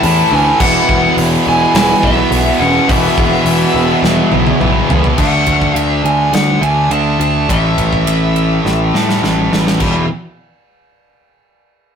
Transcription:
Already playing: A2 E3 A3 C#4 E4
0.03 E2 A2 E3 A3 E4 A5, open hi-hat
0.31 D2 A2 E3 A3 C#4 E4 G#5
0.60 E1 E2 B2 E3 G#3 B3 E4 F#5, kick, crash
0.64 E3 B3
0.89 E1, kick
1.17 E1, open hi-hat
1.47 E1 E4 G#5
1.75 E1 E4 G#5, snare, open hi-hat
2.03 B1 E2 B2 E3 B3 E5, kick
2.31 B1 E2 B2 E3, open hi-hat
2.59 E1 E3 G#3 B3 C#4 E4 F#5
2.88 E1 E2 B2 E3 G#3 B3 E4 E5, kick, open hi-hat
2.93 E3
3.18 E1, kick
3.45 E1, open hi-hat
3.74 E1
4.03 E1, snare
4.31 B1 E2 B2 E3, high tom
4.47 high tom
4.61 B1 E2 B2 E3, mid tom
4.88 E1 E3 G#3 B3 E4, floor tom
5.04 floor tom
5.18 D2 D3 A3 D4 F#5, kick, crash
5.46 D2, kick, ride
5.62 kick
5.74 D2, ride
5.79 E5
6.04 D2 G#5, ride
6.32 D2 F#5, snare, ride
6.61 D2 D3 A3 D4 G#5, ride
6.90 D2 D3 A3 D4 A5, ride
7.19 D2 A5, ride
7.48 A1 A2 E3 A3 E5, kick, ride
7.78 A1, kick, ride
7.93 kick
8.07 A1, ride
8.36 ride
8.65 A1, snare
8.94 A2 E3 A3, snare
9.09 snare
9.23 A1 A2 E3 A3, snare
9.51 A1, snare
9.67 snare
9.80 E1 E2 B2 E3, kick, crash

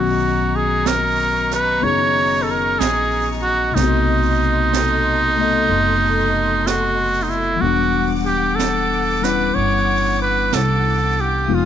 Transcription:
Already playing: B1 D#3 F#3 B3 C#4 F#4 D#5 A#5 C#6
0.56 G#4
0.86 A#4, brush sweep, snare, hi-hat pedal
1.51 B4, snare
1.81 F#1 B3 C#4 D#4 C#5, brush sweep
1.85 G#4
2.43 A4
2.51 A#4
2.79 A#1 G#4, brush sweep, snare, hi-hat pedal
3.43 F#4
3.72 B1 C3 A3 D#4 A4 C6
3.76 B3 C4, brush sweep, snare
3.83 F#4
4.73 brush sweep, snare, hi-hat pedal
5.38 A3 B3 D#5
5.69 F#1, brush sweep
6.67 F#4, brush sweep, snare, hi-hat pedal
7.23 D#4
7.30 E4
7.56 E3 G3
7.61 E1 B3 D4 F#4 F#5 D6, brush sweep
7.67 F#5
8.25 G4
8.55 A4, brush sweep, snare, hi-hat pedal
9.22 G3 C#4 E4 B4, snare
9.55 G1 C#5, brush sweep
10.22 B4
10.52 C2 A4, brush sweep, snare, hi-hat pedal
11.21 G4
11.48 F1 F3 G#3 B3 D#4 F4 G#4 F5 D#6, brush sweep
11.55 F4

